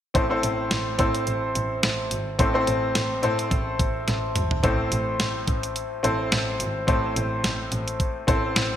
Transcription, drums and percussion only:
0.15 kick, closed hi-hat
0.43 closed hi-hat
0.71 snare, closed hi-hat
0.99 kick, closed hi-hat
1.15 closed hi-hat
1.27 closed hi-hat
1.55 closed hi-hat
1.83 snare, closed hi-hat
2.11 closed hi-hat
2.39 kick, closed hi-hat
2.67 closed hi-hat
2.95 snare, closed hi-hat
3.23 closed hi-hat
3.39 closed hi-hat
3.51 kick, closed hi-hat
3.79 kick, closed hi-hat
4.08 snare, closed hi-hat
4.36 closed hi-hat, mid tom
4.51 floor tom
4.64 kick, closed hi-hat
4.92 closed hi-hat
5.20 snare, closed hi-hat
5.47 kick, closed hi-hat
5.63 closed hi-hat
5.76 closed hi-hat
6.04 closed hi-hat
6.32 snare, closed hi-hat
6.60 closed hi-hat
6.88 kick, closed hi-hat
7.16 closed hi-hat
7.44 snare, closed hi-hat
7.72 closed hi-hat
7.88 closed hi-hat
8.00 kick, closed hi-hat
8.28 kick, closed hi-hat
8.56 snare, closed hi-hat

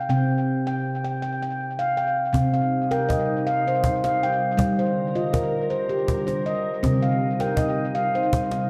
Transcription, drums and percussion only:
2.34 cajon bass
2.92 cajon slap
3.10 cajon bass
3.84 cajon bass
4.04 cajon slap
4.59 cajon bass
5.34 cajon bass
6.08 cajon bass
6.28 cajon slap
6.84 cajon bass
7.40 cajon slap
7.57 cajon bass
8.33 cajon bass
8.51 cajon slap

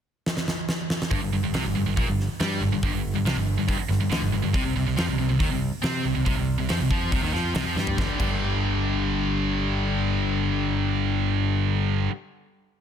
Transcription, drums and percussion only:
0.26 snare
0.37 snare
0.48 snare
0.69 snare
0.90 snare
1.02 snare
1.11 kick, open hi-hat
1.54 snare, open hi-hat
1.97 kick, open hi-hat
2.20 snare
2.40 snare, open hi-hat
2.83 kick, open hi-hat
3.26 snare, open hi-hat
3.69 kick, open hi-hat
3.91 snare
4.12 snare, open hi-hat
4.54 kick, open hi-hat
4.98 snare, open hi-hat
5.40 kick, open hi-hat
5.83 snare, open hi-hat
6.26 kick, open hi-hat
6.69 snare, open hi-hat
6.91 kick
7.12 kick, open hi-hat
7.35 snare
7.55 snare, open hi-hat
7.78 snare
7.87 floor tom
7.98 kick, snare
8.20 kick, crash

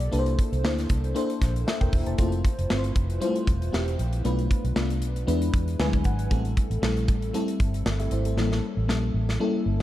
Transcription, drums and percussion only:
0.00 closed hi-hat
0.13 closed hi-hat
0.26 closed hi-hat
0.39 kick, closed hi-hat
0.53 closed hi-hat
0.65 snare
0.78 snare, closed hi-hat
0.89 kick, closed hi-hat
1.04 closed hi-hat
1.16 closed hi-hat
1.30 closed hi-hat
1.42 kick, snare, closed hi-hat
1.56 closed hi-hat
1.68 snare
1.81 kick, closed hi-hat
1.93 kick, open hi-hat
2.06 closed hi-hat
2.18 kick, closed hi-hat
2.32 closed hi-hat
2.45 kick, closed hi-hat
2.59 closed hi-hat
2.70 snare
2.84 closed hi-hat
2.96 kick, closed hi-hat
3.10 closed hi-hat
3.22 closed hi-hat
3.36 closed hi-hat
3.47 kick, closed hi-hat
3.62 closed hi-hat
3.74 snare
3.88 closed hi-hat
3.99 closed hi-hat
4.13 closed hi-hat
4.25 closed hi-hat
4.39 closed hi-hat
4.51 kick, closed hi-hat
4.65 closed hi-hat
4.76 snare
4.90 closed hi-hat
5.02 closed hi-hat
5.16 closed hi-hat
5.28 closed hi-hat
5.42 closed hi-hat
5.54 kick, closed hi-hat
5.68 closed hi-hat
5.80 snare
5.93 kick, closed hi-hat
6.04 kick, closed hi-hat
6.19 closed hi-hat
6.31 kick, closed hi-hat
6.45 closed hi-hat
6.57 kick, closed hi-hat
6.71 closed hi-hat
6.83 snare
6.97 closed hi-hat
7.08 kick, closed hi-hat
7.22 closed hi-hat
7.34 closed hi-hat
7.48 closed hi-hat
7.60 kick, closed hi-hat
7.74 closed hi-hat
7.86 snare
8.00 closed hi-hat
8.11 closed hi-hat
8.25 closed hi-hat
8.38 snare
8.52 snare
8.89 snare
9.29 snare

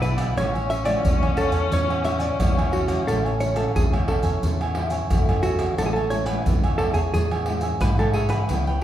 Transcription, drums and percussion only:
0.02 pandeiro, maracas
0.18 pandeiro, tamborim, maracas
0.37 pandeiro, tamborim, maracas, surdo
0.55 pandeiro, maracas
0.70 pandeiro, maracas
0.85 pandeiro, tamborim, maracas
1.05 pandeiro, maracas, surdo
1.23 pandeiro, tamborim, maracas
1.37 pandeiro, tamborim, maracas
1.52 pandeiro, maracas
1.72 pandeiro, maracas, surdo
1.90 pandeiro, tamborim, maracas
2.04 pandeiro, tamborim, maracas
2.20 pandeiro, maracas
2.40 pandeiro, tamborim, maracas, surdo
2.59 pandeiro, tamborim, maracas
2.73 pandeiro
2.88 pandeiro, tamborim, maracas
3.08 pandeiro, tamborim, maracas, surdo
3.26 pandeiro, maracas
3.40 pandeiro, maracas
3.56 pandeiro, tamborim, maracas
3.76 pandeiro, maracas, surdo
3.94 pandeiro, tamborim, maracas
4.08 pandeiro, tamborim, surdo
4.23 pandeiro, maracas
4.43 pandeiro, maracas, surdo
4.61 pandeiro, tamborim, maracas
4.75 pandeiro, tamborim
4.90 pandeiro, maracas
5.10 pandeiro, tamborim, maracas, surdo
5.29 pandeiro, tamborim, maracas
5.43 pandeiro, maracas
5.59 pandeiro, tamborim, maracas
5.78 pandeiro, tamborim, maracas, surdo
5.96 pandeiro, maracas
6.10 pandeiro, maracas
6.26 pandeiro, tamborim, maracas
6.46 pandeiro, maracas, surdo
6.64 pandeiro, tamborim, maracas
6.79 pandeiro, tamborim
6.94 pandeiro, maracas
7.14 pandeiro, maracas, surdo
7.31 pandeiro, tamborim, maracas
7.46 pandeiro, tamborim
7.61 pandeiro, maracas
7.81 pandeiro, tamborim, maracas, surdo
7.99 pandeiro, tamborim, maracas
8.14 pandeiro
8.29 pandeiro, tamborim, maracas
8.49 pandeiro, tamborim, maracas, surdo
8.67 pandeiro, maracas

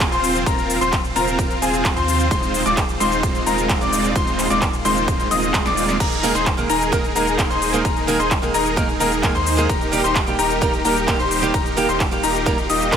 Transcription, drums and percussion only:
0.00 kick, clap, closed hi-hat, ride, shaker
0.12 closed hi-hat, shaker
0.24 open hi-hat, shaker
0.35 closed hi-hat, shaker
0.46 kick, closed hi-hat, ride, shaker
0.58 closed hi-hat, shaker
0.70 open hi-hat, shaker
0.81 closed hi-hat, shaker
0.93 kick, clap, closed hi-hat, ride, shaker
1.04 closed hi-hat, shaker
1.16 open hi-hat, shaker
1.28 closed hi-hat, shaker
1.39 kick, closed hi-hat, ride, shaker
1.51 closed hi-hat, shaker
1.62 open hi-hat, shaker
1.74 closed hi-hat, shaker
1.85 kick, clap, closed hi-hat, ride, shaker
1.97 closed hi-hat, shaker
2.08 open hi-hat, shaker
2.20 closed hi-hat, shaker
2.31 kick, closed hi-hat, ride, shaker
2.43 closed hi-hat, shaker
2.54 open hi-hat, shaker
2.66 closed hi-hat, shaker
2.77 kick, clap, closed hi-hat, ride, shaker
2.89 closed hi-hat, shaker
3.00 open hi-hat, shaker
3.12 closed hi-hat, shaker
3.23 kick, closed hi-hat, ride, shaker
3.35 closed hi-hat, shaker
3.46 open hi-hat, shaker
3.58 closed hi-hat, shaker
3.69 kick, clap, closed hi-hat, ride, shaker
3.81 closed hi-hat, shaker
3.93 open hi-hat, shaker
4.04 closed hi-hat, shaker
4.16 kick, closed hi-hat, ride, shaker
4.27 closed hi-hat, shaker
4.39 clap, open hi-hat, shaker
4.50 closed hi-hat, shaker
4.62 kick, clap, closed hi-hat, ride, shaker
4.73 closed hi-hat, shaker
4.85 open hi-hat, shaker
4.97 closed hi-hat, shaker
5.08 kick, closed hi-hat, ride, shaker
5.20 closed hi-hat, shaker
5.31 open hi-hat, shaker
5.43 closed hi-hat, shaker
5.54 kick, snare, clap, closed hi-hat, ride, shaker
5.66 snare, closed hi-hat, shaker
5.77 open hi-hat, shaker
5.89 snare, closed hi-hat, shaker
6.00 kick, closed hi-hat, ride, crash, shaker
6.12 closed hi-hat, shaker
6.23 open hi-hat, shaker
6.35 closed hi-hat, shaker
6.46 kick, clap, closed hi-hat, ride, shaker
6.58 closed hi-hat, shaker
6.70 open hi-hat, shaker
6.81 closed hi-hat, shaker
6.93 kick, closed hi-hat, ride, shaker
7.04 closed hi-hat, shaker
7.16 open hi-hat, shaker
7.27 closed hi-hat, shaker
7.39 kick, clap, closed hi-hat, ride, shaker
7.50 closed hi-hat, shaker
7.62 open hi-hat, shaker
7.73 closed hi-hat, shaker
7.85 kick, closed hi-hat, ride, shaker
7.97 closed hi-hat, shaker
8.08 open hi-hat, shaker
8.20 closed hi-hat, shaker
8.31 kick, clap, closed hi-hat, ride, shaker
8.43 closed hi-hat, shaker
8.54 open hi-hat, shaker
8.66 closed hi-hat, shaker
8.77 kick, closed hi-hat, ride, shaker
8.89 closed hi-hat, shaker
9.00 open hi-hat, shaker
9.12 closed hi-hat, shaker
9.23 kick, clap, closed hi-hat, ride, shaker
9.35 closed hi-hat, shaker
9.46 open hi-hat, shaker
9.58 closed hi-hat, shaker
9.69 kick, closed hi-hat, ride, shaker
9.81 closed hi-hat, shaker
9.93 open hi-hat, shaker
10.04 closed hi-hat, shaker
10.16 kick, clap, closed hi-hat, ride, shaker
10.27 closed hi-hat, shaker
10.39 open hi-hat, shaker
10.50 closed hi-hat, shaker
10.62 kick, closed hi-hat, ride, shaker
10.73 closed hi-hat, shaker
10.85 open hi-hat, shaker
10.96 closed hi-hat, shaker
11.08 kick, clap, closed hi-hat, ride, shaker
11.20 closed hi-hat, shaker
11.31 open hi-hat, shaker
11.43 closed hi-hat, shaker
11.54 kick, closed hi-hat, ride, shaker
11.66 closed hi-hat, shaker
11.77 open hi-hat, shaker
11.89 closed hi-hat, shaker
12.00 kick, clap, closed hi-hat, ride, shaker
12.12 closed hi-hat, shaker
12.23 open hi-hat, shaker
12.35 closed hi-hat, shaker
12.46 kick, closed hi-hat, ride, shaker
12.58 closed hi-hat, shaker
12.70 open hi-hat, shaker
12.81 closed hi-hat, shaker
12.92 kick, clap, closed hi-hat, ride, shaker

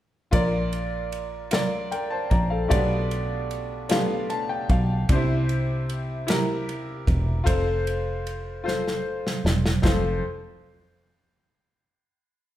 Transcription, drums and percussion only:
0.33 kick, ride bell
0.73 ride bell
1.12 ride bell
1.51 snare, ride bell
1.92 ride bell
2.31 kick, ride bell
2.71 kick, ride bell
3.11 ride bell
3.51 ride bell
3.89 snare, ride bell
4.30 ride bell
4.69 kick, ride bell
5.09 kick, ride bell
5.49 ride bell
5.89 ride bell
6.28 snare, ride bell
6.69 ride bell
7.07 kick, ride bell
7.47 kick, ride bell
7.87 ride bell
8.27 ride bell
8.68 snare
8.88 snare
9.27 snare
9.46 snare
9.66 snare
9.84 kick, snare

